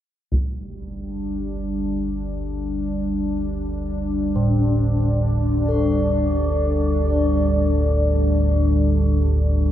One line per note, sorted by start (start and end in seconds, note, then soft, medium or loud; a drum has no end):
0.32 9.72 G1 medium
0.32 9.72 D2 medium
0.32 9.72 G3 medium
0.32 taiko medium
0.57 9.72 D4 medium
4.36 9.72 A2 medium
4.36 9.72 D5 medium
5.69 9.72 A4 soft